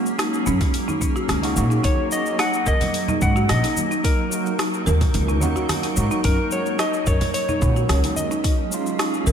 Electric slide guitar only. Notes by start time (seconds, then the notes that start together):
1.85 C#5
2.12 D#5
2.40 F#5
2.68 D#5
3.22 F#5
3.50 D#5
4.05 A#4
6.25 A#4
6.52 C#5
6.80 D#5
7.07 C#5
7.34 C#5
8.16 D#5